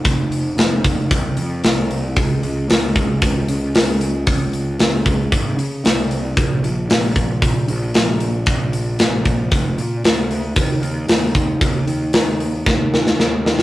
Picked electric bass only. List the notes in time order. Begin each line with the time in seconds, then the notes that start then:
0.05 F1
0.57 F1
0.85 F1
1.11 C2
1.36 F2
1.64 C2
2.17 C#2
2.43 C#2
2.69 C#2
2.96 C#2
3.22 C#2
3.49 C#2
3.76 C#2
4.27 C#2
4.80 C#2
5.06 C#2
5.32 G#1
5.57 C#3
5.84 C2
6.37 A#1
6.63 A#1
6.90 A#1
7.16 A#1
7.43 A#1
7.68 A#1
7.95 A#1
8.47 A#1
9.01 A#1
9.25 A#1
9.52 F1
9.78 A#2
10.05 D2
10.56 D#2
10.82 D#2
11.08 D#2
11.35 D#2
11.61 D#2
11.87 D#2
12.14 D#2
12.66 D#2
13.19 D#2
13.45 D#2